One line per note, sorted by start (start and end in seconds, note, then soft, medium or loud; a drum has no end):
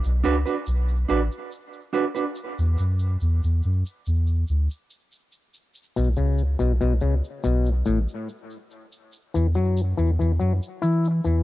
0.04 0.23 B1 medium
0.04 cabasa soft
0.24 0.45 C#2 medium
0.24 0.34 D4 medium
0.24 0.35 F#4 medium
0.24 0.35 B4 loud
0.24 cabasa soft
0.46 0.54 D4 medium
0.46 0.54 F#4 medium
0.46 0.53 B4 medium
0.46 cabasa medium
0.66 1.05 B1 medium
0.66 cabasa medium
0.88 cabasa soft
1.09 1.29 A1 medium
1.09 1.19 D4 medium
1.09 1.19 F#4 medium
1.09 1.20 B4 medium
1.09 cabasa medium
1.32 cabasa medium
1.51 cabasa medium
1.73 cabasa soft
1.93 2.03 D4 medium
1.93 2.04 F#4 medium
1.93 2.04 B4 medium
1.93 cabasa soft
2.15 2.23 D4 soft
2.15 2.23 F#4 medium
2.15 2.23 B4 medium
2.15 cabasa medium
2.35 cabasa medium
2.58 2.77 E2 loud
2.58 cabasa medium
2.78 3.17 F#2 medium
2.78 cabasa soft
2.99 cabasa medium
3.20 3.41 E2 medium
3.20 cabasa medium
3.43 3.62 E2 medium
3.43 cabasa medium
3.63 3.84 F#2 medium
3.63 cabasa medium
3.86 cabasa medium
4.05 4.44 E2 medium
4.05 cabasa medium
4.27 cabasa soft
4.47 4.68 D2 medium
4.47 cabasa medium
4.70 cabasa medium
4.90 cabasa medium
5.12 cabasa soft
5.32 cabasa soft
5.54 cabasa medium
5.74 cabasa medium
5.96 6.16 B1 medium
5.96 6.09 B2 medium
5.96 cabasa medium
6.16 6.56 C#2 medium
6.16 6.42 C#3 medium
6.16 cabasa soft
6.38 cabasa medium
6.59 6.79 B1 medium
6.59 6.72 B2 medium
6.59 cabasa medium
6.81 7.00 B1 medium
6.81 6.93 B2 medium
6.81 cabasa soft
7.01 7.22 C#2 medium
7.01 7.14 C#3 medium
7.01 cabasa medium
7.24 cabasa medium
7.44 7.83 B1 loud
7.44 7.69 B2 medium
7.44 cabasa medium
7.65 cabasa soft
7.85 8.07 A1 medium
7.85 7.99 A2 medium
7.85 cabasa medium
8.09 cabasa medium
8.29 cabasa medium
8.50 cabasa soft
8.71 cabasa medium
8.92 cabasa medium
9.12 cabasa medium
9.34 9.58 E2 medium
9.34 9.47 E3 medium
9.34 cabasa medium
9.55 9.94 F#2 medium
9.55 9.81 F#3 medium
9.55 cabasa soft
9.77 cabasa medium
9.97 10.18 E2 medium
9.97 10.11 E3 medium
9.97 cabasa medium
10.19 10.39 E2 medium
10.19 10.32 E3 medium
10.19 cabasa soft
10.40 10.60 F#2 medium
10.40 10.53 F#3 medium
10.40 cabasa medium
10.63 cabasa medium
10.82 11.21 E3 loud
10.82 11.07 E4 medium
10.82 cabasa medium
11.04 cabasa soft
11.24 11.43 E2 medium
11.24 11.43 E3 medium
11.24 cabasa medium